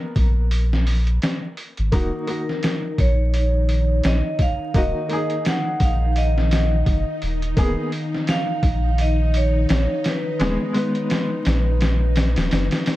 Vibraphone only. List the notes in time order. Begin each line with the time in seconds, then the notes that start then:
2.30 A#4
3.00 C#5
4.07 D#5
4.42 F5
4.77 D#5
5.48 F#5
5.83 F5
6.18 D#5
8.30 F5
9.01 D#5
9.37 C#5
10.07 B4